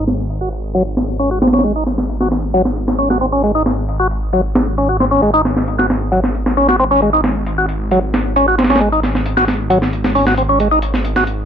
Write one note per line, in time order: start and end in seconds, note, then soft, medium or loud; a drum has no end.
0.00 5.20 G#1 medium
0.08 snare soft
0.08 closed hi-hat medium
0.30 closed hi-hat medium
0.41 0.49 F#4 medium
0.52 closed hi-hat medium
0.74 0.83 F#3 medium
0.74 closed hi-hat medium
0.97 snare soft
0.97 closed hi-hat medium
1.19 1.30 C#4 medium
1.19 closed hi-hat medium
1.31 1.39 F#4 medium
1.42 1.47 C4 medium
1.42 snare medium
1.42 closed hi-hat medium
1.47 snare medium
1.47 closed hi-hat medium
1.53 1.63 C#4 medium
1.53 snare medium
1.53 closed hi-hat medium
1.59 snare medium
1.59 closed hi-hat medium
1.64 1.73 G#3 loud
1.64 closed hi-hat medium
1.76 1.84 D#4 medium
1.76 closed hi-hat soft
1.87 snare soft
1.87 closed hi-hat medium
1.98 snare soft
2.09 closed hi-hat medium
2.21 2.28 F#4 medium
2.21 snare soft
2.32 snare soft
2.32 closed hi-hat medium
2.54 2.62 F#3 medium
2.54 closed hi-hat medium
2.65 snare soft
2.76 closed hi-hat medium
2.88 snare soft
2.99 3.09 C#4 medium
2.99 open hi-hat medium
3.10 3.18 F#4 medium
3.10 snare soft
3.21 3.26 C4 medium
3.21 closed hi-hat medium
3.32 3.42 C#4 medium
3.44 3.52 G#3 loud
3.44 closed hi-hat medium
3.55 3.63 D#4 medium
3.66 snare medium
3.66 closed hi-hat medium
3.88 closed hi-hat medium
4.00 4.08 F#4 medium
4.11 closed hi-hat medium
4.33 4.41 F#3 medium
4.33 closed hi-hat medium
4.55 snare loud
4.55 closed hi-hat medium
4.78 4.88 C#4 medium
4.78 closed hi-hat medium
4.89 4.97 F#4 medium
5.00 5.05 C4 medium
5.00 snare soft
5.00 closed hi-hat medium
5.11 5.21 C#4 medium
5.22 11.45 G#1 medium
5.22 5.31 G#3 medium
5.22 closed hi-hat medium
5.34 5.42 D#4 medium
5.34 closed hi-hat soft
5.45 snare soft
5.45 closed hi-hat medium
5.57 snare soft
5.68 closed hi-hat medium
5.79 5.87 F#4 medium
5.79 snare soft
5.90 snare soft
5.90 closed hi-hat medium
6.12 6.20 F#3 medium
6.12 closed hi-hat medium
6.24 snare soft
6.35 closed hi-hat medium
6.46 snare soft
6.57 6.67 C#4 medium
6.57 open hi-hat medium
6.68 6.76 F#4 medium
6.68 snare medium
6.79 6.84 C4 medium
6.79 closed hi-hat medium
6.91 7.01 C#4 medium
7.02 7.10 G#3 loud
7.02 closed hi-hat medium
7.13 7.21 D#4 medium
7.24 snare soft
7.24 closed hi-hat medium
7.46 closed hi-hat medium
7.58 7.66 F#4 medium
7.69 closed hi-hat medium
7.91 8.00 F#3 medium
7.91 closed hi-hat medium
8.14 snare medium
8.14 closed hi-hat medium
8.36 8.46 C#4 medium
8.36 closed hi-hat medium
8.48 8.56 F#4 medium
8.58 8.63 C4 medium
8.58 snare medium
8.58 closed hi-hat medium
8.64 snare medium
8.64 closed hi-hat medium
8.70 8.80 C#4 medium
8.70 snare medium
8.70 closed hi-hat medium
8.76 snare medium
8.76 closed hi-hat medium
8.80 8.89 G#3 loud
8.80 closed hi-hat medium
8.92 9.00 D#4 medium
8.92 closed hi-hat soft
9.03 snare soft
9.03 closed hi-hat medium
9.15 snare soft
9.26 closed hi-hat medium
9.37 9.45 F#4 medium
9.37 snare soft
9.48 snare soft
9.48 closed hi-hat medium
9.70 9.79 F#3 medium
9.70 closed hi-hat medium
9.82 snare soft
9.93 closed hi-hat medium
10.04 snare soft
10.15 10.25 C#4 medium
10.15 open hi-hat medium
10.27 10.35 F#4 medium
10.27 snare medium
10.38 10.43 C4 medium
10.38 closed hi-hat medium
10.49 10.59 C#4 medium
10.60 10.68 G#3 medium
10.60 closed hi-hat medium
10.71 10.79 D#4 medium
10.82 closed hi-hat medium
10.94 snare soft
11.05 closed hi-hat medium
11.16 11.24 F#4 medium
11.16 snare soft
11.27 closed hi-hat medium